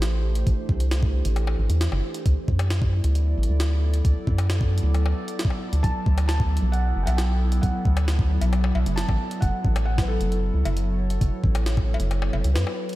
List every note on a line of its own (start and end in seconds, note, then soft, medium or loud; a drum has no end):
0.00 0.43 A1 medium
0.00 2.26 E3 medium
0.00 2.26 A3 medium
0.00 2.99 D4 medium
0.00 2.26 G4 medium
0.00 2.26 C5 medium
0.00 snare loud
0.00 closed hi-hat medium
0.35 closed hi-hat medium
0.47 0.56 A1 medium
0.47 kick loud
0.47 closed hi-hat medium
0.69 1.22 C2 medium
0.69 kick loud
0.80 closed hi-hat medium
0.91 snare loud
0.91 closed hi-hat medium
1.03 kick loud
1.25 1.55 A1 medium
1.25 closed hi-hat medium
1.36 closed hi-hat medium
1.36 high bongo medium
1.47 high bongo medium
1.58 1.68 A1 medium
1.70 1.88 E2 medium
1.70 closed hi-hat medium
1.81 snare loud
1.81 closed hi-hat medium
1.92 2.01 G1 loud
1.92 high bongo medium
2.14 closed hi-hat medium
2.26 2.35 D2 medium
2.26 12.96 F#3 medium
2.26 kick loud
2.26 closed hi-hat medium
2.37 12.96 E4 medium
2.43 12.96 B3 medium
2.43 9.42 D5 medium
2.48 3.01 F#2 medium
2.48 kick loud
2.59 closed hi-hat medium
2.59 high bongo medium
2.70 snare loud
2.70 closed hi-hat medium
2.78 12.96 A4 medium
2.78 kick loud
3.04 3.34 D2 medium
3.04 closed hi-hat medium
3.15 closed hi-hat medium
3.38 3.47 A1 medium
3.43 closed hi-hat medium
3.49 4.02 D2 medium
3.60 snare loud
3.60 closed hi-hat medium
3.94 closed hi-hat medium
4.05 4.14 D2 medium
4.05 kick loud
4.05 closed hi-hat medium
4.27 4.80 F#2 medium
4.27 kick loud
4.38 closed hi-hat medium
4.38 high bongo medium
4.50 snare loud
4.50 closed hi-hat medium
4.61 kick loud
4.78 closed hi-hat medium
4.83 5.14 D2 medium
4.94 closed hi-hat medium
4.94 high bongo medium
5.06 high bongo medium
5.28 closed hi-hat medium
5.39 snare loud
5.39 closed hi-hat medium
5.45 kick loud
5.50 high bongo soft
5.73 5.82 D2 medium
5.73 closed hi-hat medium
5.83 5.93 B1 loud
5.83 6.26 A5 loud
5.83 kick loud
5.83 closed hi-hat medium
6.06 6.59 D2 medium
6.06 kick loud
6.18 closed hi-hat medium
6.18 high bongo medium
6.28 6.74 A5 loud
6.28 snare loud
6.28 closed hi-hat soft
6.40 kick loud
6.57 closed hi-hat medium
6.62 6.93 B1 medium
6.72 7.04 F#5 loud
6.72 closed hi-hat soft
6.96 7.05 F#1 medium
7.03 7.18 F#5 medium
7.03 7.06 G5 medium
7.07 7.60 B1 medium
7.07 closed hi-hat medium
7.07 cowbell medium
7.17 7.59 G5 medium
7.17 snare loud
7.17 closed hi-hat medium
7.52 closed hi-hat medium
7.62 7.72 B1 medium
7.62 8.48 F#5 medium
7.62 kick loud
7.62 closed hi-hat soft
7.85 8.38 D2 medium
7.85 kick loud
7.97 closed hi-hat medium
7.97 high bongo medium
8.08 snare loud
8.08 closed hi-hat soft
8.19 kick loud
8.41 8.72 B1 medium
8.41 closed hi-hat medium
8.41 cowbell medium
8.53 closed hi-hat soft
8.53 high bongo medium
8.64 high bongo medium
8.75 8.84 B1 medium
8.75 cowbell medium
8.86 9.04 F#1 medium
8.86 closed hi-hat medium
8.96 9.43 A5 loud
8.96 snare loud
8.96 closed hi-hat medium
9.09 9.18 A1 loud
9.09 kick loud
9.09 high bongo medium
9.31 closed hi-hat medium
9.41 9.51 F#1 loud
9.41 9.84 F#5 loud
9.41 kick loud
9.41 closed hi-hat medium
9.65 10.17 A1 medium
9.65 kick loud
9.76 closed hi-hat medium
9.76 high bongo medium
9.85 10.02 F#5 loud
9.98 10.09 B4 medium
9.98 kick loud
9.98 snare loud
10.08 12.51 A4 loud
10.16 12.96 C#5 medium
10.20 10.51 F#1 medium
10.20 closed hi-hat medium
10.32 closed hi-hat medium
10.54 10.63 C#2 medium
10.65 11.18 F#1 medium
10.65 closed hi-hat medium
10.65 cowbell loud
10.77 closed hi-hat medium
11.10 closed hi-hat medium
11.21 11.30 F#1 loud
11.21 kick loud
11.21 closed hi-hat medium
11.44 11.96 A1 medium
11.44 kick loud
11.55 closed hi-hat medium
11.55 high bongo medium
11.66 snare loud
11.66 closed hi-hat medium
11.77 kick loud
11.77 high bongo soft
11.94 cowbell medium
12.00 12.30 F#1 medium
12.00 closed hi-hat medium
12.11 closed hi-hat medium
12.11 high bongo medium
12.22 high bongo medium
12.33 12.42 F#1 medium
12.33 cowbell medium
12.44 12.57 C#2 medium
12.44 closed hi-hat medium
12.54 12.65 F#2 medium
12.54 12.96 B4 medium
12.54 snare loud
12.54 closed hi-hat medium
12.67 high bongo medium
12.89 closed hi-hat soft